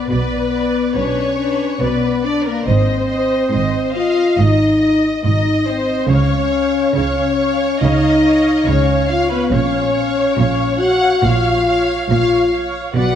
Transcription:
0.09 B1 B2 B3 B4 D5
0.52 B4 D5
0.95 B1 B2 C#4 D4 B4 C#5
1.38 D4 B4
1.81 B1 B2 B3 B4 D5
2.24 D4 B4 D5
2.46 A#3 A#4
2.66 G#1 G#2 C4 C5 D#5
3.09 D#5
3.52 G#1 G#2 D#5
3.95 F4 D#5 F5
4.37 G#1 G#2 D#4 D#5
4.80 D#5
5.24 G#1 G#2 D#4 D#5
5.66 C4 C5 D#5
6.08 C#2 C#3 C#4 C#5 F5
6.52 C#5 F5
6.95 C#2 C#3 C#4 C#5 F5
7.39 C#5 F5
7.81 C#2 C#3 D#4 C#5 D#5 F5
8.24 C#5 F5
8.67 C#2 C#3 C#4 C#5 F5
9.09 F4 C#5 F5
9.31 B3 B4
9.52 A#1 A#2 C#4 C#5 F5
9.96 C#5 F5
10.38 A#1 A#2 C#5 F5
10.79 F#4 C#5 F5 F#5
11.23 A#1 A#2 F4 C#5 F5
11.68 C#5 F5
12.09 A#1 A#2 F4 C#5 F5
12.52 C#5 F5
12.94 B1 B2 F#4 B4 D5 F#5

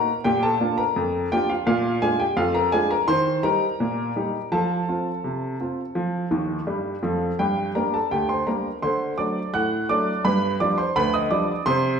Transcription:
Already playing: A#4 A#5
0.24 A#2 G4 G5
0.43 A4 A5
0.60 A#3 D4 F4
0.78 A#4 A#5
0.96 F2
1.32 A#3 D4 F4 G4 G5
1.50 F4 F5
1.67 A#2 F4 F5
2.02 G#3 D4 F4 G#4 G#5
2.20 G4 G5
2.37 F2 F4 F5
2.55 A#4 A#5
2.72 G#3 D4 F4 G#4 G#5
2.91 A#4 A#5
3.08 D#3 C5 C6
3.43 G3 D#4 G4 A#4 A#5
3.80 A#2
4.16 G3 D#4 G4
4.52 F3 A4 A5
4.88 C4 F4
5.24 C3
5.60 C4 F4
5.95 F3
6.31 D#2 D#3
6.67 G2 G3
7.03 F2 F3
7.39 G2 G4 G5
7.75 G3 A#3 D4 A#4 A#5
7.94 A4 A5
8.11 D2 G4 G5
8.29 C5 C6
8.47 G3 A#3 D4 A#4 A#5
8.82 D3 C5 C6
9.18 F#3 A3 D4 D5 D6
9.54 A2 F#5 F#6
9.89 F#3 A3 D4 D5 D6
10.25 G2 B4 B5
10.60 F3 G3 D4 D5 D6
10.78 C5 C6
10.96 D2 B4 B5
11.14 D#5 D#6
11.31 F3 G3 D4 D5 D6
11.66 C3 C5 C6

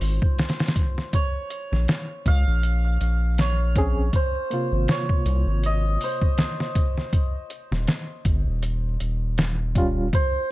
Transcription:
Already playing: G#3 D#4 F4 C5
0.01 G#1, open hi-hat
0.22 kick
0.39 snare, closed hi-hat
0.49 snare, closed hi-hat
0.59 snare, closed hi-hat
0.67 snare, closed hi-hat
0.76 kick, closed hi-hat
0.98 snare
1.13 C#5, kick, closed hi-hat
1.50 closed hi-hat
1.72 A#1, snare
1.88 snare, closed hi-hat
2.26 C#2 F5, kick, closed hi-hat
2.47 A#1
2.63 closed hi-hat
3.01 A#1, closed hi-hat
3.38 C#5, snare, closed hi-hat
3.76 C4 C#4 G#4, kick, closed hi-hat
4.13 C5, kick, closed hi-hat
4.50 C3 A#3 F4, closed hi-hat
4.72 G#1
4.88 C#5, snare, closed hi-hat
5.09 kick
5.25 C2, closed hi-hat
5.46 G#1
5.63 D#5, closed hi-hat
6.01 C5, open hi-hat
6.22 kick
6.38 snare, closed hi-hat
6.60 snare
6.75 kick, closed hi-hat
6.97 snare
7.13 kick, closed hi-hat
7.50 closed hi-hat
7.72 D#1, snare
7.88 snare, closed hi-hat
8.25 G1, kick, closed hi-hat
8.46 D#1
8.63 closed hi-hat
9.00 D#1, closed hi-hat
9.38 snare, closed hi-hat
9.75 G3 C#4 F4, kick, closed hi-hat
10.13 C5, kick, closed hi-hat

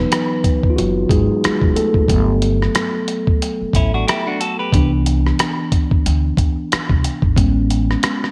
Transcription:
Already playing: E3 F#3 B3 D#4 B4
0.12 cross-stick, closed hi-hat
0.44 kick, closed hi-hat
0.63 kick
0.70 F4
0.76 F#1 F#3 F#4, closed hi-hat
1.09 G#1 F#3 G#3 D#4 G#4, kick, closed hi-hat
1.44 muted upright bass stroke, cross-stick, closed hi-hat
1.61 E1, kick
1.76 A3 A4, closed hi-hat
1.94 F#1, kick
2.08 G1 F#3 A3 B3, kick, closed hi-hat
2.42 closed hi-hat
2.62 cross-stick
2.75 cross-stick, closed hi-hat
3.08 closed hi-hat
3.27 kick
3.42 closed hi-hat
3.61 muted upright bass stroke
3.73 A1 C#4 E4, kick, closed hi-hat
3.94 D4 F#4
4.08 E4 G4, cross-stick, closed hi-hat
4.27 D4 F#4
4.40 F#4 A4, closed hi-hat
4.59 G4 B4
4.72 C2 E3 B3 D4, kick, closed hi-hat
5.06 closed hi-hat
5.27 cross-stick
5.39 cross-stick, closed hi-hat
5.72 kick, closed hi-hat
5.91 kick
6.06 D2, closed hi-hat
6.37 E2, kick, closed hi-hat
6.72 muted upright bass stroke, cross-stick, closed hi-hat
6.89 C2, kick
7.04 closed hi-hat
7.22 G#1, kick
7.36 A1 G#3 B3 C#4, kick, closed hi-hat
7.70 closed hi-hat
7.91 cross-stick
8.03 cross-stick, closed hi-hat
8.24 cross-stick

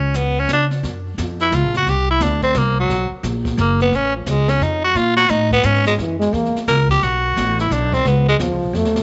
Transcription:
Already playing: C#2 C#4
0.14 B3, snare, hi-hat pedal
0.40 C#4
0.48 C#3, snare, hi-hat pedal
0.53 D4
0.71 snare
0.83 F#2, brush sweep, kick, snare
1.18 F2, kick, snare, hi-hat pedal
1.40 E4, snare
1.52 C#2 F4, kick, snare, hi-hat pedal
1.64 A#1
1.74 F#1 F#4, snare
1.86 C2 G4, brush sweep, kick, snare
2.11 E4
2.20 D2 D4, kick, snare, hi-hat pedal
2.42 C4, kick, snare
2.54 C2 A#3, kick, snare, hi-hat pedal
2.80 F#3
2.89 B1, brush sweep, kick, snare
3.23 A#1, kick, snare, hi-hat pedal
3.45 kick, snare
3.57 F#1 A#3, kick, snare, hi-hat pedal
3.80 B3, snare
3.92 A1 C#4, brush sweep, kick, snare
4.16 F3
4.26 C#2 G#3, kick, snare, hi-hat pedal
4.48 C#4, snare
4.60 F2 D#4, kick, snare
4.85 F#4
4.95 A#2 F4, brush sweep, kick, snare
5.16 F#4, snare
5.29 A2 D#4, kick, snare, hi-hat pedal
5.51 B3, kick, snare
5.63 G#2 C#4, kick, snare, hi-hat pedal
5.75 snare
5.85 G#3, snare
5.87 snare
5.98 F#2 E3, brush sweep, kick, snare
6.19 G#3, snare
6.33 E2 A#3, kick, snare
6.45 snare
6.55 muted upright bass stroke, snare
6.67 C#2 A#4, kick, snare, hi-hat pedal
6.89 G4, kick, snare
7.02 B1 F#4, brush sweep, kick, snare
7.36 A1, kick, snare, hi-hat pedal
7.59 E4, snare
7.70 B1 D4, kick, snare, hi-hat pedal
7.92 C4, kick, snare
8.05 C#2 B3, brush sweep, kick, snare
8.29 G#3
8.39 D#2 F3, kick, snare, hi-hat pedal
8.51 C#2
8.62 B1
8.73 F2 A3, snare
8.85 D#2, snare
8.96 C2, snare

